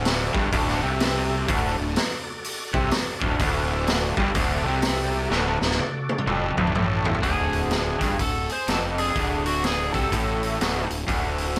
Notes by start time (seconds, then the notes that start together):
Already playing: D1 D2 F#4 A4 D5
0.05 snare, open hi-hat
0.35 G1 G2, kick
0.52 D1 D2, kick, open hi-hat
0.68 snare
0.82 C2 C3
1.00 snare, open hi-hat
1.48 D1 D2, kick, open hi-hat
1.78 D1 D2
1.96 snare, open hi-hat
2.44 open hi-hat
2.74 C2 C3, kick
2.91 snare, open hi-hat
3.21 D1 D2, kick
3.39 D1 D2 F#4 A4 D5, kick, open hi-hat
3.87 snare, open hi-hat
4.17 G1 G2, kick
4.35 D1 D2, kick, open hi-hat
4.64 C2 C3
4.82 snare, open hi-hat
5.31 D1 D2, snare
5.61 D1 D2, snare
5.71 snare
5.79 high tom
6.09 high tom
6.18 mid tom
6.27 F1 F2, mid tom
6.57 D1 D2, mid tom
6.67 mid tom
6.75 A1 A2, mid tom
7.05 floor tom
7.15 floor tom
7.23 D1 D2 D4 G#4, kick, open hi-hat
7.53 open hi-hat
7.71 snare, open hi-hat
8.01 G1 G2, kick, snare, open hi-hat
8.19 D1 D2 F#4 A4, kick, open hi-hat
8.49 G#4 C5, open hi-hat
8.68 F1 F2 F#4 A4, snare, open hi-hat
8.98 D4 G#4, open hi-hat
9.15 D1 D2, kick, open hi-hat
9.46 D4 F#4, open hi-hat
9.64 D4 G#4, snare, open hi-hat
9.94 C2 C3 F#4 A4, kick, open hi-hat
10.12 A1 A2, kick, open hi-hat
10.43 open hi-hat
10.60 D1 D2, snare, open hi-hat
10.90 D1 D2, open hi-hat
11.07 D1 D2, kick, open hi-hat
11.38 open hi-hat
11.56 open hi-hat